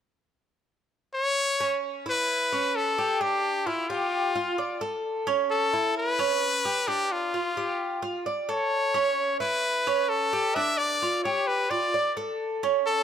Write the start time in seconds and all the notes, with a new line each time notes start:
1.14 C#5
1.60 C#4
2.06 E4 B4
2.52 C#4
2.76 A4
2.98 G4
3.21 D4 G4
3.67 E4 F4
3.89 F4 G4
4.35 F4
4.58 D5
4.81 A4
5.27 C#4
5.51 A4
5.73 E4
5.98 B4
6.19 C#4
6.65 G4
6.88 D4 G4
7.12 F4
7.34 F4
7.57 G4
8.02 F4
8.26 D5
8.49 A4 C#5
8.94 C#4
9.40 E4 B4
9.87 C#4
10.09 A4
10.33 G4
10.55 D4 E5
10.78 D5
11.02 F4
11.24 G4 C#5
11.47 B4
11.70 F4 D5
11.94 D5
12.17 A4
12.63 C#4
12.87 A4